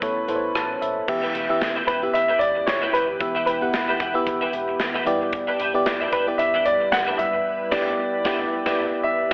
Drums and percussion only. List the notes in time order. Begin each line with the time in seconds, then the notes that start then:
0.02 kick, closed hi-hat
0.28 closed hi-hat
0.55 cross-stick, closed hi-hat
0.82 closed hi-hat
1.08 kick, crash
1.35 closed hi-hat
1.61 snare, closed hi-hat
1.88 kick, closed hi-hat
2.15 closed hi-hat
2.41 closed hi-hat
2.67 snare, closed hi-hat
2.94 closed hi-hat
3.21 kick, closed hi-hat
3.47 closed hi-hat
3.74 snare, closed hi-hat
4.00 kick, closed hi-hat
4.27 kick, closed hi-hat
4.53 closed hi-hat
4.80 snare, closed hi-hat
5.07 closed hi-hat
5.33 kick, closed hi-hat
5.60 closed hi-hat
5.86 snare, closed hi-hat
6.13 kick, closed hi-hat
6.39 closed hi-hat
6.66 closed hi-hat
6.92 snare, closed hi-hat
7.19 closed hi-hat
7.72 kick, snare, crash
8.25 kick, snare
8.66 kick, snare